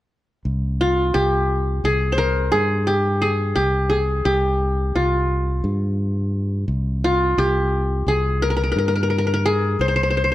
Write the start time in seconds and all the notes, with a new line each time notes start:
0.45 C2
0.81 F4
1.14 C2 G4
1.84 C2 G#4
2.12 C5
2.18 A#4
2.52 G2 G#4
2.87 G4
3.22 G#4
3.56 C2 G4
3.90 G#4
4.25 C2 G4
4.95 C2 F4
5.64 G2
6.68 C2
7.04 F4
7.38 C2 G4
8.07 C2 G#4
8.42 A#4
8.50 A#4
8.57 A#4
8.64 A#4
8.72 A#4
8.76 G2 A#4
8.88 A#4
8.96 A#4
9.03 A#4
9.10 A#4
9.18 A#4
9.27 A#4
9.34 A#4
9.46 G#4
9.79 C2 C5
9.88 C5
9.96 C5
10.03 C5
10.10 C5
10.17 C5
10.24 C5
10.32 C5